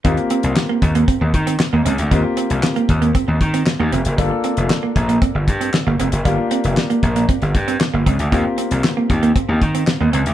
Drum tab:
HH |xxxx--xxx-xx--xx|x-xx-xxxx-xx--xx|x-xx--xxx-xx--xx|x-xx-xxxxxxx--xx|
CP |----x-------x---|----x-------x---|----x-------x---|----x-------x---|
SD |----o-------o---|----o-------o---|----o-------o---|----o-------o---|
BD |o-----o-o-o-----|o-----o-o-o-----|o-----o-o-o-----|o-----o-o-o---o-|

HH |x-xx--xxx-xx--xx|
CP |----x-------x---|
SD |----o-------o---|
BD |o-----o-o-o-----|